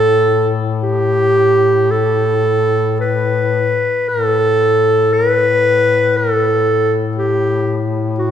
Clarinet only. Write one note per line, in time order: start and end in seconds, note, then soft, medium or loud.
0.00 0.50 A4 medium
0.83 1.93 G4 medium
1.91 3.00 A4 medium
3.00 4.10 B4 medium
4.09 5.15 A4 medium
5.13 6.18 B4 medium
6.17 7.00 A4 medium
7.17 7.89 G4 medium
8.19 8.31 F#4 medium